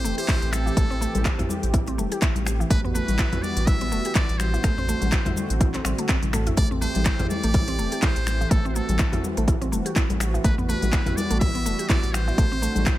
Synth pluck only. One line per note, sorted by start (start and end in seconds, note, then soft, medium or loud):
0.04 0.12 A3 medium
0.18 0.27 G4 medium
0.28 0.41 E4 medium
0.66 0.76 E3 medium
0.77 0.90 A3 medium
0.90 0.96 C4 medium
1.01 1.13 A3 medium
1.25 1.38 E4 medium
1.39 1.49 E4 medium
1.74 1.87 E4 medium
1.88 1.93 C4 medium
1.98 2.05 A3 medium
2.12 2.21 G4 medium
2.22 2.35 E4 medium
2.60 2.70 E3 medium
2.71 2.84 A3 medium
2.85 2.90 B3 medium
2.95 3.07 A3 medium
3.19 3.31 E4 medium
3.33 3.43 E4 medium
3.68 3.80 E4 medium
3.81 3.87 B3 medium
3.92 3.99 A3 medium
4.05 4.15 G4 medium
4.16 4.28 E4 medium
4.54 4.63 E3 medium
4.64 4.77 A3 medium
4.78 4.84 C4 medium
4.89 5.01 A3 medium
5.12 5.25 E4 medium
5.26 5.36 E4 medium
5.61 5.74 E4 medium
5.74 5.80 C4 medium
5.85 5.98 C4 medium
5.99 6.08 A3 medium
6.09 6.17 C4 medium
6.33 6.46 A3 medium
6.47 6.57 E4 medium
6.57 6.70 A3 medium
6.71 6.77 C4 medium
6.82 6.94 A3 medium
7.06 7.18 E4 medium
7.19 7.30 E4 medium
7.44 7.50 A3 medium
7.54 7.67 E4 medium
7.68 7.74 C4 medium
7.79 7.86 A3 medium
7.92 8.02 G4 medium
8.03 8.15 E4 medium
8.41 8.50 E3 medium
8.52 8.64 A3 medium
8.65 8.71 C4 medium
8.76 8.88 A3 medium
9.00 9.12 E4 medium
9.13 9.23 E4 medium
9.37 9.43 A3 medium
9.48 9.61 E4 medium
9.61 9.67 C4 medium
9.72 9.79 A3 medium
9.86 9.95 G4 medium
9.96 10.09 E4 medium
10.34 10.44 E3 medium
10.45 10.58 A3 medium
10.58 10.64 B3 medium
10.69 10.81 A3 medium
10.93 11.05 E4 medium
11.07 11.17 E4 medium
11.31 11.36 A3 medium
11.41 11.54 E4 medium
11.55 11.61 B3 medium
11.66 11.73 A3 medium
11.79 11.89 G4 medium
11.89 12.02 E4 medium
12.28 12.37 E3 medium
12.38 12.51 A3 medium
12.52 12.58 C4 medium
12.62 12.75 A3 medium
12.86 12.98 E4 medium